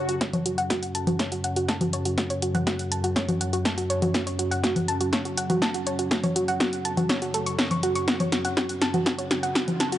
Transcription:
Already playing: F#2 C#3, swell
0.09 F#4, closed hi-hat
0.21 F#2 C#3 F#4, kick, snare, closed hi-hat
0.33 C#5, closed hi-hat, low conga
0.46 F#4, closed hi-hat
0.58 F#5, closed hi-hat
0.70 F#4, kick, snare, closed hi-hat
0.83 closed hi-hat
0.95 A5, closed hi-hat
1.07 F#4, closed hi-hat, low conga
1.19 C#5, kick, snare, closed hi-hat
1.32 F#4, closed hi-hat
1.44 F#5, closed hi-hat
1.56 F#4, closed hi-hat
1.68 A5, kick, snare, closed hi-hat
1.81 F#4, closed hi-hat, low conga
1.93 C#5, closed hi-hat
2.05 F#4, closed hi-hat
2.18 F#4, kick, snare, closed hi-hat
2.30 C#5, closed hi-hat
2.42 F#4, closed hi-hat
2.55 F#5, closed hi-hat, low conga
2.67 F#4, kick, snare, closed hi-hat
2.79 closed hi-hat
2.92 A5, closed hi-hat
3.04 F#4, closed hi-hat
3.16 C#5, kick, snare, closed hi-hat
3.28 F#4, closed hi-hat, low conga
3.41 F#5, closed hi-hat
3.53 F#4, closed hi-hat
3.65 A5, kick, snare, closed hi-hat
3.78 F#4, closed hi-hat
3.90 C#5, closed hi-hat
4.02 F#4, closed hi-hat, low conga
4.14 F#4, kick, snare, closed hi-hat
4.27 C#5, closed hi-hat
4.39 F#4, closed hi-hat
4.51 F#5, closed hi-hat
4.63 F#4, kick, snare, closed hi-hat
4.76 closed hi-hat, low conga
4.88 A5, closed hi-hat
5.01 F#4, closed hi-hat
5.13 C#5, kick, snare, closed hi-hat
5.25 F#4, closed hi-hat
5.38 F#5, closed hi-hat
5.50 F#4, closed hi-hat, low conga
5.62 A5, kick, snare, closed hi-hat
5.74 F#4, closed hi-hat
5.87 C#5, closed hi-hat
5.99 F#4, closed hi-hat
6.11 F#4, kick, snare, closed hi-hat
6.24 C#5, closed hi-hat, low conga
6.36 F#4, closed hi-hat
6.48 F#5, closed hi-hat
6.60 F#4, kick, snare, closed hi-hat
6.73 closed hi-hat
6.85 A5, closed hi-hat
6.97 F#4, closed hi-hat, low conga
7.09 C#5, kick, snare, closed hi-hat
7.22 F#4, closed hi-hat
7.34 A4, closed hi-hat
7.46 C#6, closed hi-hat
7.59 C#5, kick, snare, closed hi-hat
7.71 C#6, closed hi-hat, low conga
7.83 F#4, closed hi-hat
7.95 C#6, closed hi-hat
8.08 F#4, kick, snare, closed hi-hat, riser
8.20 C#5, closed hi-hat, low conga
8.32 F#4, snare, closed hi-hat
8.45 F#5, closed hi-hat
8.57 F#4, kick, snare, closed hi-hat
8.69 closed hi-hat
8.82 A5, snare, closed hi-hat
8.94 F#4, closed hi-hat, low conga
9.06 F#4, kick, snare, closed hi-hat
9.18 C#5, closed hi-hat
9.31 F#4, snare, closed hi-hat
9.43 F#5, closed hi-hat
9.55 F#4, kick, snare, closed hi-hat
9.68 closed hi-hat, low conga
9.80 A5, snare, closed hi-hat
9.92 F#4, closed hi-hat

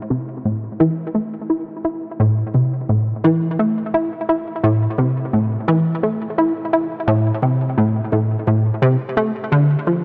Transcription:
0.10 C3
0.45 A2
0.80 E3
1.14 A3
1.50 E4
1.84 E4
2.20 A2
2.54 C3
2.89 A2
3.24 E3
3.59 A3
3.94 E4
4.29 E4
4.63 A2
4.98 C3
5.33 A2
5.68 E3
6.03 A3
6.38 E4
6.73 E4
7.07 A2
7.42 C3
7.77 A2
8.12 A2
8.47 A2
8.82 C3
9.17 A3
9.52 D3
9.87 F3

